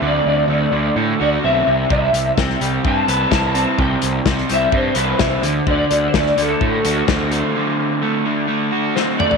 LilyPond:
<<
  \new Staff \with { instrumentName = "Clean electric guitar" } { \time 4/4 \key d \mixolydian \tempo 4 = 128 d''8 d''4. r8 d''8 e''4 | e''4 g''4 a''4 a''4 | g''4 r8 e''8 c''8 c''4. | d''8.~ d''32 c''32 d''8 a'2~ a'8~ |
a'2. c''8 d''8 | }
  \new Staff \with { instrumentName = "Overdriven electric guitar" } { \time 4/4 \key d \mixolydian <d a c' fis'>4 a8 d8 a8 fis'8 c'8 c8 | c4 c'8 g8 c'8 b'8 e'8 c'8 | c4 c'8 g8 c'8 b'8 e'8 d8 | d4 a8 d8 a8 fis'8 c'8 a8 |
d4 a8 d8 a8 fis'8 c'8 a8 | }
  \new Staff \with { instrumentName = "Picked electric bass" } { \clef bass \time 4/4 \key d \mixolydian d,8 d,8 d,8 d,8 a,8 d,8 b,,8 c,8 | c,8 c,8 c,8 c,8 g,8 c,8 c,4 | c,8 c,8 c,8 c,8 g,8 c,8 c,8 d,8 | d,8 d,8 d,8 d,8 a,8 d,8 d,4 |
r1 | }
  \new DrumStaff \with { instrumentName = "Drums" } \drummode { \time 4/4 r4 r4 r4 r4 | bd8 hh8 <bd sn>16 sn16 hh8 bd8 hh8 <bd sn>8 hh8 | bd8 hh8 <bd sn>16 sn16 hh8 bd8 hh8 <bd sn>8 hh8 | bd8 hh8 <bd sn>16 sn16 hh8 bd8 hh8 <bd sn>8 hh8 |
r4 r4 r4 sn8 toml16 tomfh16 | }
>>